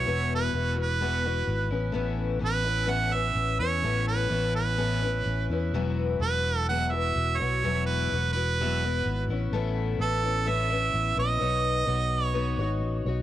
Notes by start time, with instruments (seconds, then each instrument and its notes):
Already playing: harmonica C#5
0.06 fingered electric bass E1, twelve-string acoustic guitar E2 B2 E3 B3 E4 F#4
0.35 harmonica B4
0.53 fingered electric bass E1, twelve-string acoustic guitar E3 B3 E4 F#4
0.76 twelve-string acoustic guitar E3 B3 E4 F#4
0.82 harmonica B4
1.01 twelve-string acoustic guitar E2 B2 E3 B3 E4 F#4
1.25 twelve-string acoustic guitar E3 B3 E4 F#4
1.47 fingered electric bass G#1
1.71 fingered electric bass A1, twelve-string acoustic guitar B3 C#4 E4
1.92 fingered electric bass A1, twelve-string acoustic guitar A2 E3 B3 C#4 E4
2.39 fingered electric bass A1, twelve-string acoustic guitar E3 B3 C#4 E4
2.45 harmonica B4
2.64 twelve-string acoustic guitar B3 C#4 E4
2.87 twelve-string acoustic guitar A2 E3 B3 C#4 E4
2.91 harmonica F#5
3.12 twelve-string acoustic guitar B3 C#4 E4, harmonica E5
3.35 fingered electric bass A1
3.59 fingered electric bass E2, twelve-string acoustic guitar B3 C#4 E4, harmonica C#5
3.83 fingered electric bass A1, twelve-string acoustic guitar A2 E3 B3 C#4 E4
4.07 harmonica B4
4.29 fingered electric bass A1, twelve-string acoustic guitar E3 B3 C#4 E4
4.55 harmonica B4
4.77 twelve-string acoustic guitar A2 E3 B3 C#4 E4
5.02 twelve-string acoustic guitar B3 C#4 E4
5.26 fingered electric bass A1
5.49 fingered electric bass E2, twelve-string acoustic guitar C#4 E4
5.53 twelve-string acoustic guitar B3
5.72 fingered electric bass E1, twelve-string acoustic guitar E2 E3 F#3 B3 E4 F#4
6.20 fingered electric bass E1, twelve-string acoustic guitar F#3 B3 E4 F#4, harmonica B4
6.69 twelve-string acoustic guitar E2 E3 F#3 B3 E4 F#4, harmonica F#5
6.91 twelve-string acoustic guitar F#3 B3 E4 F#4, harmonica E5
7.16 fingered electric bass E1
7.39 fingered electric bass B1, twelve-string acoustic guitar F#3 B3 E4 F#4, harmonica C#5
7.62 fingered electric bass E1, twelve-string acoustic guitar E2 E3 F#3 B3 E4 F#4
7.86 harmonica B4
8.12 fingered electric bass E1, twelve-string acoustic guitar F#3 B3 E4 F#4
8.32 twelve-string acoustic guitar B3 E4 F#4, harmonica B4
8.37 twelve-string acoustic guitar F#3
8.60 twelve-string acoustic guitar E2 E3 F#3 B3 E4 F#4
8.84 twelve-string acoustic guitar F#3 B3 E4 F#4
9.05 fingered electric bass G#1
9.28 fingered electric bass A1, twelve-string acoustic guitar B3 E4
9.32 twelve-string acoustic guitar C#4
9.52 fingered electric bass A1, twelve-string acoustic guitar A2 A3 B3 C#4 E4
9.98 fingered electric bass A1, twelve-string acoustic guitar A3 C#4, harmonica A4
10.03 twelve-string acoustic guitar B3 E4
10.24 twelve-string acoustic guitar B3 C#4 E4
10.46 twelve-string acoustic guitar A2 A3 B3 C#4 E4, harmonica E5
10.70 twelve-string acoustic guitar B3 C#4 E4
10.94 fingered electric bass A1
11.17 fingered electric bass A#1, twelve-string acoustic guitar B3 C#4 E4, harmonica D#5
11.40 fingered electric bass B1, twelve-string acoustic guitar B3 D#4 F#4 C#5
11.86 fingered electric bass B1, twelve-string acoustic guitar B3 D#4 F#4 C#5
12.25 harmonica C#5
12.34 twelve-string acoustic guitar B3 D#4 F#4 C#5
12.57 fingered electric bass G#1, twelve-string acoustic guitar F#4 C#5
12.61 twelve-string acoustic guitar D#4
12.80 fingered electric bass A1
13.05 fingered electric bass B1, twelve-string acoustic guitar D#4 F#4 C#5